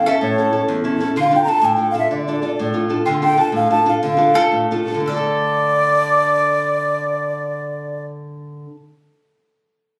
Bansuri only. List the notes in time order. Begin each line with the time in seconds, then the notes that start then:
0.07 E5
0.22 C#5
1.21 F5
1.35 G5
1.44 A#5
1.49 A5
1.65 G5
1.91 F5
1.99 E5
2.11 D5
2.19 D5
2.26 D5
2.33 D5
2.43 D5
2.48 D5
2.56 D5
2.64 D5
3.06 G5
3.23 G5
3.40 A5
3.56 F5
3.71 A5
3.89 F5
4.03 F5
5.09 D5